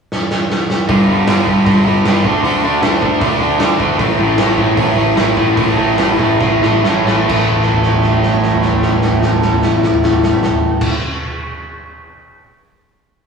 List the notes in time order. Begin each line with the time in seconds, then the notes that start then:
0.12 snare
0.31 snare
0.50 snare
0.70 snare
0.88 G1 G2 D3 G3, kick, open hi-hat
1.08 G1 G2 D3 G3
1.27 G1 G2 D3 G3, snare, open hi-hat
1.46 G1 G2 D3 G3, kick
1.66 G1 G2 D3 G3, kick, open hi-hat
1.85 G1 G2 D3 G3
2.04 G1 G2 D3 G3, snare, open hi-hat
2.24 D2 D3 A3 D4, kick
2.42 D2 D3 A3 D4, open hi-hat
2.62 D2 D3 A3 D4
2.81 D2 D3 A3 D4, snare, open hi-hat
3.01 D2 D3 A3 D4, kick
3.20 D2 D3 A3 D4, kick, open hi-hat
3.40 D2 D3 A3 D4
3.59 D2 D3 A3 D4, snare, open hi-hat
3.79 D2 D3 A3 D4, kick
3.99 A1 A2 E3 A3, kick, open hi-hat
4.17 A1 A2 E3 A3
4.37 A1 A2 E3 A3, snare, open hi-hat
4.57 A1 A2 E3 A3, kick
4.75 A1 A2 E3 A3, kick, open hi-hat
4.94 A1 A2 E3 A3
5.16 A1 A2 E3 A3, snare, open hi-hat
5.35 A1 A2 E3 A3, kick
5.55 A1 A2 E3 A3, kick, open hi-hat
5.76 A1 A2 E3 A3
5.97 A1 A2 E3 A3, snare, open hi-hat
6.19 A1 A2 E3 A3, kick
6.41 A1 A2 E3 A3, kick, snare
6.61 A1 A2 E3 A3, snare
6.83 A1 A2 E3 A3, snare
7.05 A1 A2 E3 A3, snare
7.27 A1 A2 E3 A3, kick, crash
7.52 floor tom
7.62 snare
7.73 floor tom
7.83 snare
7.92 floor tom
8.02 snare
8.13 floor tom
8.23 snare
8.33 floor tom
8.43 snare
8.52 floor tom
8.62 snare
8.73 floor tom
8.82 snare
8.93 floor tom
9.02 snare
9.13 floor tom
9.22 snare
9.32 floor tom
9.42 snare
9.53 floor tom
9.63 snare
9.73 floor tom
9.83 snare
9.93 floor tom
10.03 snare
10.13 floor tom
10.23 snare
10.33 floor tom
10.43 snare
10.53 floor tom
10.81 kick, crash